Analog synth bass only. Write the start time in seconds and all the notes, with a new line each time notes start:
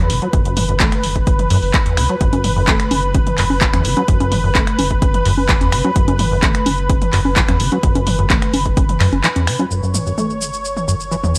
0.10 F#1
0.33 F#1
1.04 F#1
1.50 F#2
1.62 F#1
1.97 C#2
2.21 F#1
2.91 F#1
3.38 F#1
3.73 F#1
3.85 F#1
4.08 F#1
4.78 F#1
5.25 F#1
5.61 F#1
5.72 F#1
5.96 F#1
6.66 F#1
7.13 F#1
7.48 F#1
7.60 F#1
7.83 F#1
8.53 F#1
9.00 F#2
9.12 F#1
9.71 F#1